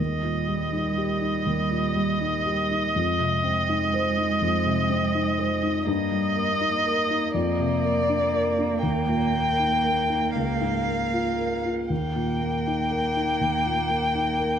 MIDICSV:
0, 0, Header, 1, 4, 480
1, 0, Start_track
1, 0, Key_signature, -3, "major"
1, 0, Tempo, 737101
1, 1922, Time_signature, 4, 2, 24, 8
1, 5749, Tempo, 768246
1, 7669, Tempo, 746269
1, 9400, End_track
2, 0, Start_track
2, 0, Title_t, "Violin"
2, 0, Program_c, 0, 40
2, 0, Note_on_c, 0, 75, 43
2, 3797, Note_off_c, 0, 75, 0
2, 3824, Note_on_c, 0, 75, 65
2, 4758, Note_off_c, 0, 75, 0
2, 4789, Note_on_c, 0, 74, 67
2, 5726, Note_off_c, 0, 74, 0
2, 5746, Note_on_c, 0, 79, 55
2, 6675, Note_off_c, 0, 79, 0
2, 6700, Note_on_c, 0, 77, 44
2, 7517, Note_off_c, 0, 77, 0
2, 7670, Note_on_c, 0, 79, 52
2, 9400, Note_off_c, 0, 79, 0
2, 9400, End_track
3, 0, Start_track
3, 0, Title_t, "Grand piano"
3, 0, Program_c, 1, 0
3, 0, Control_c, 1, 64, 127
3, 0, Note_on_c, 1, 39, 40
3, 2, Control_c, 1, 64, 0
3, 117, Control_c, 1, 64, 127
3, 148, Note_on_c, 1, 46, 29
3, 310, Note_on_c, 1, 55, 29
3, 411, Note_off_c, 1, 46, 0
3, 470, Note_on_c, 1, 63, 31
3, 572, Note_off_c, 1, 55, 0
3, 633, Note_on_c, 1, 67, 34
3, 731, Note_off_c, 1, 63, 0
3, 789, Note_on_c, 1, 63, 31
3, 892, Note_off_c, 1, 67, 0
3, 931, Note_off_c, 1, 39, 0
3, 952, Note_on_c, 1, 39, 34
3, 1050, Note_off_c, 1, 63, 0
3, 1111, Note_on_c, 1, 46, 35
3, 1273, Note_on_c, 1, 55, 35
3, 1374, Note_off_c, 1, 46, 0
3, 1437, Note_on_c, 1, 63, 32
3, 1535, Note_off_c, 1, 55, 0
3, 1599, Note_on_c, 1, 67, 36
3, 1697, Note_off_c, 1, 63, 0
3, 1761, Note_on_c, 1, 63, 35
3, 1857, Note_off_c, 1, 67, 0
3, 1893, Note_off_c, 1, 39, 0
3, 1921, Note_off_c, 1, 63, 0
3, 1927, Note_on_c, 1, 41, 49
3, 1933, Control_c, 1, 64, 0
3, 2054, Control_c, 1, 64, 127
3, 2081, Note_on_c, 1, 48, 39
3, 2238, Note_on_c, 1, 60, 35
3, 2334, Note_off_c, 1, 48, 0
3, 2401, Note_on_c, 1, 63, 39
3, 2492, Note_off_c, 1, 60, 0
3, 2564, Note_on_c, 1, 72, 45
3, 2653, Note_off_c, 1, 63, 0
3, 2719, Note_on_c, 1, 63, 38
3, 2814, Note_off_c, 1, 72, 0
3, 2850, Note_off_c, 1, 41, 0
3, 2877, Note_on_c, 1, 41, 44
3, 2971, Note_off_c, 1, 63, 0
3, 3034, Note_on_c, 1, 48, 43
3, 3190, Note_on_c, 1, 60, 45
3, 3289, Note_off_c, 1, 48, 0
3, 3351, Note_on_c, 1, 63, 45
3, 3445, Note_off_c, 1, 60, 0
3, 3510, Note_on_c, 1, 72, 43
3, 3605, Note_off_c, 1, 63, 0
3, 3665, Note_on_c, 1, 63, 44
3, 3763, Note_off_c, 1, 72, 0
3, 3802, Note_off_c, 1, 41, 0
3, 3822, Note_on_c, 1, 43, 62
3, 3825, Note_off_c, 1, 63, 0
3, 3839, Control_c, 1, 64, 0
3, 3943, Control_c, 1, 64, 127
3, 3983, Note_on_c, 1, 55, 45
3, 4140, Note_on_c, 1, 58, 40
3, 4240, Note_off_c, 1, 55, 0
3, 4302, Note_on_c, 1, 63, 44
3, 4399, Note_off_c, 1, 58, 0
3, 4464, Note_on_c, 1, 70, 49
3, 4560, Note_off_c, 1, 63, 0
3, 4625, Note_on_c, 1, 63, 44
3, 4721, Note_off_c, 1, 70, 0
3, 4757, Note_off_c, 1, 43, 0
3, 4781, Note_on_c, 1, 41, 52
3, 4785, Note_off_c, 1, 63, 0
3, 4797, Control_c, 1, 64, 0
3, 4899, Control_c, 1, 64, 127
3, 4947, Note_on_c, 1, 48, 43
3, 5109, Note_on_c, 1, 58, 44
3, 5204, Note_off_c, 1, 48, 0
3, 5268, Note_on_c, 1, 62, 42
3, 5365, Note_off_c, 1, 58, 0
3, 5431, Note_on_c, 1, 70, 40
3, 5525, Note_off_c, 1, 62, 0
3, 5589, Note_on_c, 1, 62, 40
3, 5687, Note_off_c, 1, 70, 0
3, 5722, Note_off_c, 1, 41, 0
3, 5749, Note_on_c, 1, 39, 52
3, 5750, Note_off_c, 1, 62, 0
3, 5760, Control_c, 1, 64, 0
3, 5860, Control_c, 1, 64, 127
3, 5906, Note_on_c, 1, 46, 37
3, 6067, Note_on_c, 1, 58, 34
3, 6159, Note_off_c, 1, 46, 0
3, 6226, Note_on_c, 1, 63, 36
3, 6319, Note_off_c, 1, 58, 0
3, 6377, Note_on_c, 1, 70, 37
3, 6479, Note_off_c, 1, 63, 0
3, 6539, Note_on_c, 1, 63, 36
3, 6636, Note_off_c, 1, 70, 0
3, 6677, Note_off_c, 1, 39, 0
3, 6700, Note_on_c, 1, 37, 40
3, 6701, Note_off_c, 1, 63, 0
3, 6715, Control_c, 1, 64, 0
3, 6837, Control_c, 1, 64, 127
3, 6861, Note_on_c, 1, 44, 32
3, 7022, Note_on_c, 1, 58, 31
3, 7121, Note_off_c, 1, 44, 0
3, 7187, Note_on_c, 1, 65, 34
3, 7283, Note_off_c, 1, 58, 0
3, 7347, Note_on_c, 1, 70, 31
3, 7446, Note_off_c, 1, 65, 0
3, 7513, Note_on_c, 1, 65, 32
3, 7605, Note_off_c, 1, 70, 0
3, 7644, Note_off_c, 1, 37, 0
3, 7668, Note_on_c, 1, 39, 47
3, 7671, Note_off_c, 1, 65, 0
3, 7681, Control_c, 1, 64, 0
3, 7773, Control_c, 1, 64, 127
3, 7833, Note_on_c, 1, 46, 39
3, 7998, Note_on_c, 1, 58, 34
3, 8092, Note_off_c, 1, 46, 0
3, 8164, Note_on_c, 1, 63, 35
3, 8255, Note_off_c, 1, 58, 0
3, 8317, Note_on_c, 1, 70, 36
3, 8418, Note_off_c, 1, 63, 0
3, 8480, Note_on_c, 1, 63, 35
3, 8574, Note_off_c, 1, 70, 0
3, 8612, Note_off_c, 1, 39, 0
3, 8638, Note_on_c, 1, 39, 39
3, 8735, Note_off_c, 1, 63, 0
3, 8798, Note_on_c, 1, 46, 37
3, 8952, Note_on_c, 1, 58, 38
3, 9050, Note_off_c, 1, 46, 0
3, 9112, Note_on_c, 1, 63, 37
3, 9206, Note_off_c, 1, 58, 0
3, 9272, Note_on_c, 1, 70, 37
3, 9365, Note_off_c, 1, 63, 0
3, 9400, Note_off_c, 1, 39, 0
3, 9400, Note_off_c, 1, 70, 0
3, 9400, End_track
4, 0, Start_track
4, 0, Title_t, "Cello"
4, 0, Program_c, 2, 42
4, 0, Note_on_c, 2, 55, 41
4, 1897, Note_off_c, 2, 55, 0
4, 1922, Note_on_c, 2, 56, 52
4, 3800, Note_off_c, 2, 56, 0
4, 3827, Note_on_c, 2, 58, 66
4, 7518, Note_off_c, 2, 58, 0
4, 7671, Note_on_c, 2, 58, 52
4, 9400, Note_off_c, 2, 58, 0
4, 9400, End_track
0, 0, End_of_file